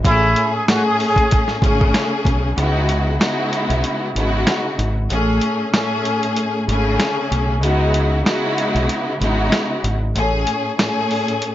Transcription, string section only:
0.03 A2 A3 C#4 G#4
0.66 A2 A3 C#4 G#4
1.61 C#3 A3 C#4 G#4
2.55 C#3 G#3 B3 D#4 E4 F#4
3.17 C#3 G#3 B3 D#4 E4 F#4
4.14 C#3 G#3 B3 D#4 E4 F#4
5.09 A2 A3 C#4 G#4
5.71 A2 A3 C#4 G#4
6.66 C#3 A3 C#4 G#4
7.60 C#3 G#3 B3 D#4 E4 F#4
8.23 C#3 G#3 B3 D#4 E4 F#4
9.19 C#3 G#3 B3 D#4 E4 F#4
10.14 A2 A3 C#4 G#4
10.76 A2 A3 C#4 G#4

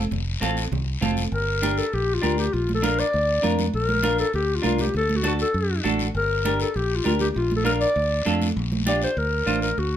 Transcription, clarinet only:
1.33 A#4
1.78 A4
1.93 G4
2.14 F4
2.24 F4
2.39 G4
2.53 F4
2.74 A4
2.84 A#4
2.99 D5
3.75 A#4
4.20 A4
4.35 G4
4.55 F4
4.65 F4
4.81 G4
4.96 A4
5.16 F#4
5.27 F#4
5.42 A4
6.16 A#4
6.62 A4
6.75 G4
6.96 F4
7.06 F4
7.21 G4
7.37 F4
7.56 A4
7.66 A#4
7.81 D5
8.88 D5
9.03 C5
9.18 A#4
9.62 A#4
9.79 F#4

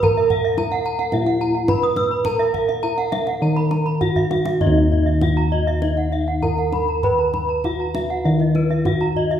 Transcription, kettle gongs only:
Already playing: A#2
0.03 A#4
0.57 E4
1.13 A#2
1.70 E4
2.26 A#4
2.84 E4
3.42 D#3
4.01 E4
4.61 D#4
4.66 D#2
5.22 E4
6.44 E4
7.04 B4
7.65 E4
8.25 D#3
8.86 E4

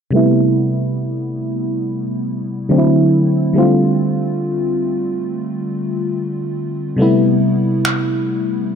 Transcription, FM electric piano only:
0.11 C3 G3 A3
0.15 B3 E4
2.69 D3 F#3 A3 C4 D4
2.78 E4
3.53 D3 G3 A3
3.57 C4 F4
6.96 C3 G3 A3
7.01 B3 E4

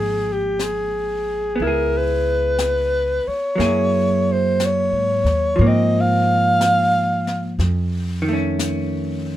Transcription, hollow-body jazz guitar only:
Already playing: F3 A#3 D#4
1.56 B3
1.62 E4
1.67 G#4
3.56 F#3 A#3
3.60 E4 G#4
5.56 F3
5.61 A#3
5.66 C4
8.22 D#3
8.29 A3
8.33 C#4

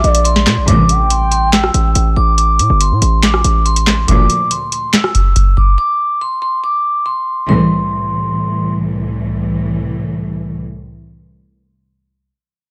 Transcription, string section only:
0.68 C2 A2 E3
4.08 D2 A#2 F3
7.49 C2 A2 E3

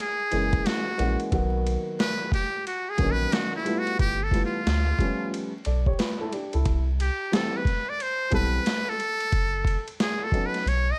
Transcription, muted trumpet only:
0.00 G#4
0.67 F#4
2.01 B4
2.34 G4
2.67 F#4
2.90 G#4
3.11 B4
3.34 F#4
3.56 E4
3.79 F#4
4.01 G4
4.23 A4
4.46 F4
7.01 G4
7.34 A4
7.57 B4
7.90 D5
8.02 C5
8.34 B4
8.89 A4
10.01 G#4
10.24 A4
10.46 B4
10.68 C#5
10.91 D#5

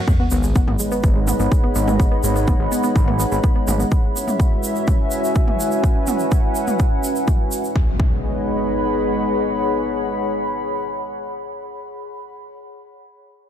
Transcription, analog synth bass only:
0.32 G#1
0.68 G#1
1.04 G#1
1.40 G#1
1.76 G#1
2.24 G#1
2.60 G#1
2.96 G#1
3.32 G#1
3.68 G#1

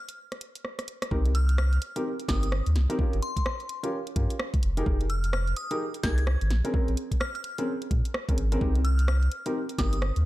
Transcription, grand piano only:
1.11 C4 D#4 G4 A#4
1.96 C4 D#4 G4 A#4
2.28 C4 D#4 G4 A#4
2.90 C4 D#4 G4 A#4
2.99 C#4 F4 G4
3.83 C#4 F4 G4 A#4
4.16 C#4 F4 G4 A#4
4.77 D#4 G4 G#4 A#4
4.86 D#4 G4 G#4 A#4
5.71 D#4 G4 G#4 A#4
6.03 D#4 G4 G#4 A#4
6.65 C4 C#4 G#4 A#4
6.74 C4 C#4 G#4 A#4
7.58 C4 C#4 G#4 A#4
8.29 C4 C#4 G#4 A#4
8.52 C4 C#4 G#4 A#4
8.61 C4 D#4 G4 A#4
9.46 C4 D#4 G4 A#4
9.79 C4 D#4 G4 A#4

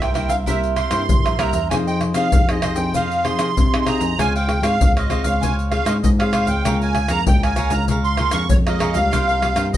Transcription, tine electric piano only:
Already playing: C2
0.29 C2
0.91 G2
1.09 G1
1.26 A#1
1.39 C2
1.53 E2
1.71 F2
2.15 C3
2.33 F2
2.77 F2
3.39 C3
3.57 C3
4.01 F2
4.19 C#2
4.62 G#2
4.80 C#2
5.24 C#2
5.86 G#2
6.04 G#2
6.48 C#2
6.66 C#2
7.09 F2
7.28 C#2
7.71 C#2
8.33 F2
8.51 F2
8.95 C#2
9.13 C2
9.57 G2

